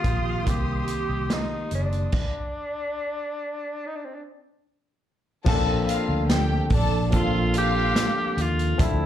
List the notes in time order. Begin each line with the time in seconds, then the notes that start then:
Already playing: D#3 A#3 C4 F4 G4 C6 D#6
0.04 A#1, kick, closed hi-hat
0.44 C2 D#3 A#3 C4 G4, kick, closed hi-hat
0.50 G4
0.88 closed hi-hat
1.09 C2
1.30 D#4, snare, closed hi-hat
1.71 F#1, closed hi-hat
1.75 D4
1.92 closed hi-hat
2.12 kick, crash
3.87 D#4
3.96 D4
4.05 C4
4.15 D4
5.44 A#1 F3 A#3 C4 C#4 A4 A5, kick, crash
5.54 D4
5.88 F4 F5, closed hi-hat
6.09 D2
6.28 G4 G5, snare, closed hi-hat
6.70 A#1 A4 A5, kick, open hi-hat
6.74 D4
7.11 F3 A#3 C4 D4 F4 A4 F5, kick, closed hi-hat
7.16 F4
7.54 F4 F5, closed hi-hat
7.58 G4
7.96 snare, closed hi-hat
8.37 D#2 F4, closed hi-hat
8.59 closed hi-hat
8.77 D2 F3 C4 D4 A4 E5, kick, closed hi-hat
8.83 E4